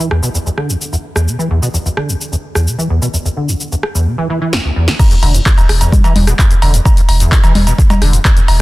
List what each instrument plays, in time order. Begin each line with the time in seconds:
0.00 cabasa
0.11 acid bass E2, cross-stick
0.23 acid bass B2, cabasa
0.34 acid bass E2, cabasa
0.46 acid bass E2, cabasa
0.57 acid bass D3, cross-stick
0.69 acid bass E2, cabasa
0.82 cabasa
0.92 acid bass E2, cabasa
1.16 acid bass E2, cross-stick, cabasa
1.27 acid bass B2, cabasa
1.39 acid bass E3, cabasa
1.50 acid bass E2
1.62 acid bass B2, cabasa
1.74 acid bass E2, cabasa
1.85 acid bass E2, cabasa
1.97 acid bass D3, cross-stick
2.09 acid bass E2, cabasa
2.21 cabasa
2.32 acid bass E2, cabasa
2.55 acid bass E2, cross-stick, cabasa
2.67 acid bass B2, cabasa
2.78 acid bass E3, cabasa
2.90 acid bass E2
3.02 acid bass B2, cabasa
3.13 acid bass E2, cabasa
3.25 acid bass E2, cabasa
3.37 acid bass D3
3.48 acid bass E2, cabasa
3.61 cabasa
3.72 acid bass E2, cabasa
3.83 cross-stick
3.95 acid bass E2, cabasa
4.06 acid bass B2
4.18 acid bass E3
4.30 acid bass E3
4.41 acid bass E3
4.53 acid bass E2, snare
4.65 acid bass D2
4.76 acid bass E2
4.88 acid bass E3, snare
4.99 acid bass E2, kick, crash, cowbell, cabasa
5.11 acid bass E2, closed hi-hat, cabasa
5.23 analog synth bass E1, acid bass D3, open hi-hat, cowbell
5.34 acid bass E2, closed hi-hat, cabasa
5.46 kick, clap, cabasa
5.57 analog synth bass E1, acid bass E2, closed hi-hat, cowbell, cabasa
5.69 analog synth bass E1, cross-stick, open hi-hat
5.81 acid bass E2, closed hi-hat, cowbell, cabasa
5.92 acid bass B2, kick, low conga, cabasa
6.04 acid bass E3, closed hi-hat, cowbell, cabasa
6.16 analog synth bass E1, acid bass E2, open hi-hat, low conga
6.27 acid bass B2, cross-stick, closed hi-hat, cabasa
6.39 acid bass E2, kick, clap, cowbell, cabasa
6.51 acid bass E2, closed hi-hat, cabasa
6.62 analog synth bass E1, acid bass D3, open hi-hat, cowbell
6.74 acid bass E2, closed hi-hat, cabasa
6.85 kick, cowbell, cabasa
6.97 acid bass E2, closed hi-hat, cabasa
7.09 analog synth bass E1, open hi-hat, cowbell
7.20 acid bass E2, closed hi-hat, cabasa
7.32 acid bass B2, kick, clap, cabasa
7.44 analog synth bass E1, acid bass E3, closed hi-hat, cowbell, cabasa
7.55 analog synth bass E1, acid bass E2, open hi-hat, low conga
7.67 acid bass B2, closed hi-hat, cowbell, cabasa
7.78 acid bass E2, kick, cabasa
7.90 acid bass E2, closed hi-hat, cowbell, low conga, cabasa
8.02 analog synth bass E1, acid bass D3, cross-stick, open hi-hat
8.13 acid bass E2, closed hi-hat, cabasa
8.25 kick, clap, cowbell, cabasa
8.37 acid bass E2, closed hi-hat, cabasa
8.48 analog synth bass E1, open hi-hat, cowbell